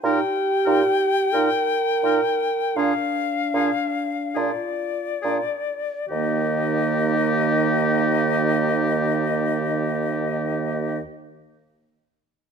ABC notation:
X:1
M:4/4
L:1/8
Q:1/4=37
K:Eb
V:1 name="Flute"
g4 f2 d2 | e8 |]
V:2 name="Oboe"
B B B B A A A A | G8 |]
V:3 name="French horn"
G2 B2 D2 F z | E,8 |]
V:4 name="Clarinet"
E E E E D D D D | B,8 |]
V:5 name="Bassoon" clef=bass
B,, B,, B,, B,, B,, B,, B,, B,, | E,,8 |]